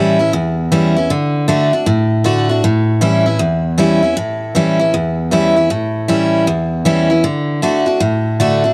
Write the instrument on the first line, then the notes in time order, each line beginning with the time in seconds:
steel-string acoustic guitar
Already playing: A2 E3 G3 C#4 E4
0.19 C#4 E4
0.33 E2
0.72 E3 G3 C#4 E4
0.97 C#4 E4
1.10 D3
1.48 D3 A3 D4 F#4
1.73 D4 F#4
1.86 A2
2.24 D3 A3 D4 F#4
2.49 D4 F#4
2.64 A2
3.01 E3 G3 C#4 E4
3.26 C#4 E4
3.39 E2
3.78 E3 G3 C#4 E4
4.03 C#4 E4
4.17 A2
4.55 E3 G3 C#4 E4
4.79 C#4 E4
4.94 E2
5.31 E3 G3 C#4 E4
5.56 C#4 E4
5.70 A2
6.08 E3 G3 C#4 E4
6.47 E2
6.85 E3 G3 C#4 E4
7.10 C#4 E4
7.24 D3
7.62 D3 A3 D4 F#4
7.86 D4 F#4
8.00 A2
8.40 D3 A3 D4 F#4
8.64 D4 F#4